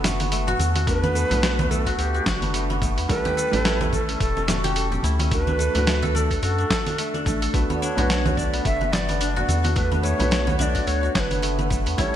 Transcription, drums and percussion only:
0.04 snare medium
0.04 open hi-hat medium
0.04 high conga medium
0.04 low conga loud
0.04 cabasa medium
0.20 open hi-hat soft
0.20 high conga medium
0.20 cabasa soft
0.32 open hi-hat medium
0.32 cabasa soft
0.47 low conga medium
0.47 cabasa soft
0.59 open hi-hat soft
0.59 muted conga medium
0.59 high conga medium
0.59 cabasa medium
0.75 open hi-hat medium
0.75 high conga medium
0.75 cabasa soft
0.87 kick loud
0.87 open hi-hat medium
0.87 cabasa soft
1.03 muted conga medium
1.03 low conga medium
1.03 cabasa soft
1.16 cabasa medium
1.31 open hi-hat soft
1.31 low conga medium
1.31 cabasa soft
1.43 snare medium
1.43 open hi-hat medium
1.43 cabasa soft
1.59 muted conga medium
1.59 high conga medium
1.59 low conga medium
1.59 cabasa soft
1.71 low conga medium
1.71 cabasa medium
1.86 kick medium
1.86 open hi-hat soft
1.86 cabasa soft
1.99 open hi-hat medium
1.99 cabasa soft
2.15 cabasa soft
2.26 kick loud
2.26 snare medium
2.26 open hi-hat medium
2.26 cabasa medium
2.42 open hi-hat soft
2.42 high conga medium
2.42 cabasa soft
2.54 open hi-hat medium
2.54 cabasa soft
2.70 high conga medium
2.70 cabasa soft
2.82 kick loud
2.82 open hi-hat soft
2.82 low conga medium
2.82 cabasa medium
2.98 open hi-hat soft
2.98 cabasa soft
3.09 kick loud
3.09 open hi-hat medium
3.09 cabasa soft
3.25 muted conga soft
3.25 low conga medium
3.25 cabasa soft
3.38 cabasa medium
3.53 open hi-hat soft
3.53 low conga medium
3.53 cabasa soft
3.65 snare medium
3.65 open hi-hat medium
3.65 cabasa soft
3.81 muted conga medium
3.81 high conga medium
3.81 low conga medium
3.81 cabasa soft
3.93 kick medium
3.93 low conga medium
3.93 cabasa medium
4.09 open hi-hat soft
4.09 cabasa soft
4.20 kick loud
4.20 open hi-hat medium
4.20 cabasa soft
4.37 muted conga medium
4.37 cabasa soft
4.48 snare medium
4.48 open hi-hat medium
4.48 high conga medium
4.48 low conga medium
4.48 cabasa medium
4.64 open hi-hat soft
4.64 high conga medium
4.64 cabasa soft
4.76 open hi-hat medium
4.76 cabasa soft
4.92 low conga medium
4.92 cabasa soft
5.03 open hi-hat soft
5.03 muted conga soft
5.03 high conga medium
5.03 cabasa medium
5.19 open hi-hat soft
5.19 high conga medium
5.19 cabasa soft
5.32 kick loud
5.32 open hi-hat medium
5.32 cabasa soft
5.47 muted conga soft
5.47 low conga medium
5.47 cabasa soft
5.60 cabasa medium
5.75 open hi-hat soft
5.75 low conga medium
5.75 cabasa soft
5.87 snare medium
5.87 open hi-hat medium
5.87 cabasa soft
6.03 muted conga medium
6.03 high conga medium
6.03 low conga medium
6.03 cabasa soft
6.15 low conga medium
6.15 cabasa medium
6.31 kick medium
6.31 open hi-hat soft
6.31 cabasa soft
6.43 open hi-hat medium
6.43 cabasa soft
6.60 cabasa soft
6.70 kick loud
6.70 snare medium
6.70 open hi-hat soft
6.70 cabasa medium
6.87 open hi-hat soft
6.87 high conga medium
6.87 cabasa soft
6.98 open hi-hat medium
6.98 cabasa soft
7.14 high conga medium
7.14 cabasa soft
7.26 kick loud
7.26 open hi-hat soft
7.26 low conga medium
7.26 cabasa medium
7.42 open hi-hat soft
7.42 cabasa soft
7.54 kick loud
7.54 open hi-hat medium
7.54 cabasa soft
7.70 muted conga soft
7.70 low conga medium
7.70 cabasa soft
7.83 cabasa medium
7.98 open hi-hat soft
7.98 low conga loud
7.98 cabasa soft
8.10 snare medium
8.10 open hi-hat soft
8.10 cabasa soft
8.25 muted conga medium
8.25 high conga medium
8.25 low conga medium
8.25 cabasa soft
8.37 kick medium
8.37 low conga medium
8.37 cabasa medium
8.54 open hi-hat soft
8.54 cabasa soft
8.65 kick loud
8.65 open hi-hat medium
8.65 cabasa soft
8.81 muted conga medium
8.81 cabasa soft
8.92 snare medium
8.92 open hi-hat medium
8.92 high conga medium
8.92 low conga medium
8.92 cabasa medium
9.09 open hi-hat soft
9.09 high conga medium
9.09 cabasa soft
9.21 open hi-hat medium
9.21 cabasa soft
9.37 low conga medium
9.37 cabasa soft
9.49 open hi-hat soft
9.49 muted conga soft
9.49 high conga medium
9.49 cabasa medium
9.65 open hi-hat soft
9.65 high conga medium
9.65 cabasa soft
9.76 kick loud
9.76 open hi-hat medium
9.76 cabasa soft
9.92 muted conga soft
9.92 low conga medium
9.92 cabasa soft
10.05 cabasa medium
10.20 open hi-hat soft
10.20 low conga medium
10.20 cabasa soft
10.32 snare medium
10.32 open hi-hat medium
10.32 cabasa soft
10.47 muted conga medium
10.47 high conga medium
10.47 low conga medium
10.47 cabasa soft
10.60 low conga medium
10.60 cabasa medium
10.75 kick medium
10.75 open hi-hat soft
10.75 cabasa soft
10.87 open hi-hat medium
10.87 cabasa soft
11.04 cabasa soft
11.15 kick loud
11.15 snare medium
11.15 open hi-hat medium
11.15 cabasa medium
11.31 open hi-hat soft
11.31 high conga medium
11.31 cabasa soft
11.43 open hi-hat medium
11.43 cabasa soft
11.59 high conga medium
11.59 cabasa soft
11.70 kick loud
11.70 open hi-hat soft
11.70 low conga medium
11.70 cabasa medium
11.87 open hi-hat soft
11.87 cabasa soft
11.98 kick loud
11.98 open hi-hat medium
11.98 cabasa soft

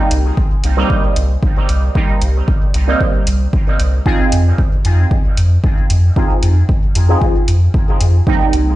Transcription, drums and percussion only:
0.11 closed hi-hat medium
0.37 kick loud
0.64 closed hi-hat medium
0.90 kick loud
1.16 closed hi-hat medium
1.43 kick loud
1.69 closed hi-hat medium
1.95 kick loud
2.22 closed hi-hat medium
2.48 kick loud
2.74 closed hi-hat medium
3.01 kick loud
3.27 closed hi-hat medium
3.53 kick loud
3.80 closed hi-hat medium
4.06 kick loud
4.32 closed hi-hat medium
4.58 kick loud
4.85 closed hi-hat medium
5.11 kick loud
5.37 closed hi-hat medium
5.64 kick loud
5.90 closed hi-hat medium
6.16 kick loud
6.43 closed hi-hat medium
6.69 kick loud
6.95 closed hi-hat medium
7.22 kick loud
7.48 closed hi-hat medium
7.74 kick loud
8.01 closed hi-hat medium
8.27 kick loud
8.53 closed hi-hat medium

